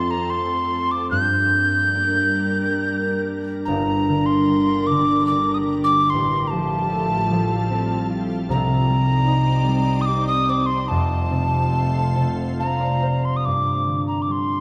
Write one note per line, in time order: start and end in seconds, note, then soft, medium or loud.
0.00 1.16 F2 medium
0.00 1.09 F3 medium
0.00 2.00 A3 soft
0.00 1.09 C4 medium
0.00 2.51 C4 soft
0.00 2.04 F4 medium
0.00 1.09 A4 medium
0.00 0.12 C6 medium
0.11 0.31 A#5 medium
0.30 0.93 C6 medium
0.91 1.10 D6 medium
1.11 3.67 G2 medium
1.11 3.65 G3 medium
1.11 3.64 D4 medium
1.11 3.65 A#4 medium
1.11 3.21 G6 medium
1.94 4.49 A#3 soft
1.94 4.75 D4 soft
1.94 4.31 G4 soft
3.65 6.18 G1 medium
3.65 6.18 G2 medium
3.65 8.44 G3 medium
3.65 6.09 D4 medium
3.65 6.10 A#4 medium
3.65 4.27 A#5 medium
4.09 4.89 D3 soft
4.26 4.88 C6 medium
4.49 6.19 A#3 soft
4.87 6.18 D3 medium
4.87 5.26 D6 loud
5.27 5.56 D6 medium
5.32 8.12 D4 medium
5.54 5.57 D#6 medium
5.73 8.09 G4 soft
5.84 6.11 D6 loud
6.10 8.53 A1 medium
6.10 8.45 A2 medium
6.10 8.53 A2 medium
6.10 8.45 F4 medium
6.10 8.46 A4 medium
6.10 6.49 C6 medium
6.47 8.07 A5 medium
6.47 6.51 A#5 medium
6.53 7.30 F3 soft
6.93 10.26 A3 medium
7.31 8.53 F3 medium
7.70 10.70 C4 medium
8.10 10.62 F4 medium
8.48 10.94 C2 medium
8.48 10.94 C3 medium
8.48 10.87 C4 medium
8.48 10.87 D#4 medium
8.48 10.87 D5 medium
8.48 10.03 A#5 medium
8.90 9.66 G3 medium
9.28 11.98 D#4 medium
9.67 10.94 G3 medium
10.01 10.07 D#6 medium
10.06 12.43 G4 medium
10.06 10.27 D6 medium
10.27 10.51 D#6 loud
10.49 12.47 C5 soft
10.49 10.68 D6 medium
10.66 10.90 C6 medium
10.88 13.50 F1 medium
10.88 13.50 F2 medium
10.88 13.43 A3 medium
10.88 13.43 F4 medium
10.88 13.43 C5 medium
10.88 12.29 A5 medium
11.31 12.14 C3 soft
11.73 14.60 A3 medium
12.15 13.50 C3 soft
12.15 13.61 A5 medium
12.59 14.60 C4 soft
12.59 14.26 F5 medium
12.59 13.26 A#5 medium
12.80 14.60 D5 medium
13.02 14.60 F4 soft
13.02 14.60 C5 medium
13.25 13.38 C6 medium
13.36 13.47 D#6 medium
13.45 14.60 G2 soft
13.45 14.07 D6 medium
13.87 14.60 D3 soft
14.08 14.24 A#5 soft
14.22 14.33 D6 soft
14.29 14.60 G3 soft
14.29 14.60 C6 medium